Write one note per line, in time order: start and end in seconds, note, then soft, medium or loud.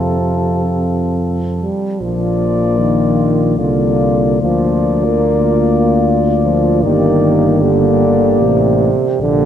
0.00 1.69 F2 soft
0.00 1.18 C3 soft
0.00 1.68 C4 soft
0.00 1.68 F4 soft
0.00 1.64 A4 soft
1.61 2.03 G3 soft
2.01 3.55 A#1 soft
2.01 2.80 F3 soft
2.01 3.55 A#3 soft
2.01 3.55 F4 soft
2.01 3.55 D5 soft
2.79 3.60 D#3 medium
3.58 4.40 C2 soft
3.58 4.41 D3 soft
3.58 4.40 A#3 soft
3.58 4.40 F4 soft
3.58 4.39 D5 soft
4.41 6.84 D2 soft
4.41 5.06 F3 medium
4.41 6.80 A#3 soft
4.41 6.79 F4 medium
4.41 6.79 D5 soft
5.04 6.04 A#3 medium
6.44 6.85 F3 medium
6.82 8.39 G1 medium
6.82 7.64 D#3 medium
6.82 7.60 A#3 soft
6.82 7.58 G4 medium
6.82 7.59 D5 medium
7.59 8.40 D3 medium
7.59 8.89 A#3 medium
7.59 9.16 G4 medium
7.59 8.88 D5 medium
8.40 8.91 A1 soft
8.40 9.20 C3 medium
9.19 9.45 A#1 medium
9.19 9.45 D3 medium
9.19 9.45 A#3 medium
9.19 9.45 G4 medium
9.19 9.45 D5 medium